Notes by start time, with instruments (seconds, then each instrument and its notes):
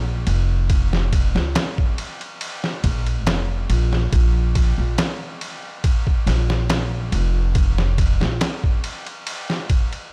Already playing: upright bass A#1
0.27 upright bass F1, ride
0.70 kick, ride
0.93 snare
1.13 kick, ride
1.35 upright bass C#2, snare
1.55 snare, ride
1.78 kick
1.98 ride
2.21 ride
2.41 ride
2.64 snare
2.84 upright bass A#1, kick, ride
3.06 ride
3.27 upright bass F1, snare, ride
3.70 upright bass A#1, ride
3.93 snare
4.13 upright bass A#1, kick, ride
4.55 kick, ride
4.78 upright bass A#1
4.98 snare, ride
5.41 ride
5.84 kick, ride
6.07 kick
6.26 upright bass A#1, snare, ride
6.50 snare
6.70 snare, ride
7.12 upright bass F1, ride
7.55 kick, ride
7.78 snare
7.98 kick, ride
8.21 upright bass A#1, snare
8.41 snare, ride
8.64 kick
8.84 ride
9.06 ride
9.27 ride
9.50 snare
9.70 kick, ride
9.93 ride